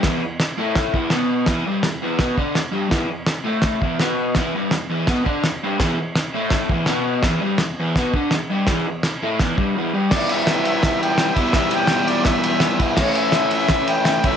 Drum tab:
CC |x-x-x-x-|x-x-x-x-|x-x-x-x-|x-x-x-x-|
RD |--------|--------|--------|--------|
SD |o-o-o-o-|o-o-o-o-|o-o-o-o-|o-o-o-o-|
BD |o---oo--|o---oo--|o---oo--|o---oo--|

CC |x-x-x-x-|x-x-x-x-|x-x-x---|x-------|
RD |--------|--------|--------|-xxxxxxx|
SD |o-o-o-o-|o-o-o-o-|o-o-o---|o-o-o-o-|
BD |o---oo--|o---oo--|o---oo--|o---o--o|

CC |--------|x-------|
RD |xxxxxxxx|-xxxxxxx|
SD |o-o-o-o-|o-o-o-o-|
BD |o---o--o|o---o--o|